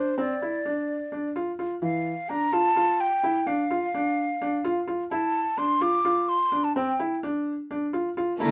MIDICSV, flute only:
0, 0, Header, 1, 2, 480
1, 0, Start_track
1, 0, Key_signature, -1, "minor"
1, 0, Tempo, 470219
1, 182, Time_signature, 7, 3, 24, 8
1, 8688, End_track
2, 0, Start_track
2, 0, Title_t, "Flute"
2, 0, Program_c, 0, 73
2, 0, Note_on_c, 0, 72, 72
2, 188, Note_off_c, 0, 72, 0
2, 202, Note_on_c, 0, 74, 62
2, 1351, Note_off_c, 0, 74, 0
2, 1864, Note_on_c, 0, 77, 73
2, 2341, Note_on_c, 0, 82, 87
2, 2356, Note_off_c, 0, 77, 0
2, 2585, Note_on_c, 0, 81, 94
2, 2600, Note_off_c, 0, 82, 0
2, 3066, Note_on_c, 0, 79, 84
2, 3082, Note_off_c, 0, 81, 0
2, 3543, Note_on_c, 0, 77, 72
2, 3558, Note_off_c, 0, 79, 0
2, 4982, Note_off_c, 0, 77, 0
2, 5215, Note_on_c, 0, 81, 77
2, 5697, Note_on_c, 0, 84, 88
2, 5712, Note_off_c, 0, 81, 0
2, 5942, Note_on_c, 0, 86, 102
2, 5958, Note_off_c, 0, 84, 0
2, 6419, Note_on_c, 0, 84, 88
2, 6434, Note_off_c, 0, 86, 0
2, 6779, Note_on_c, 0, 81, 71
2, 6794, Note_off_c, 0, 84, 0
2, 6895, Note_off_c, 0, 81, 0
2, 6901, Note_on_c, 0, 79, 61
2, 7347, Note_off_c, 0, 79, 0
2, 8581, Note_on_c, 0, 82, 80
2, 8688, Note_off_c, 0, 82, 0
2, 8688, End_track
0, 0, End_of_file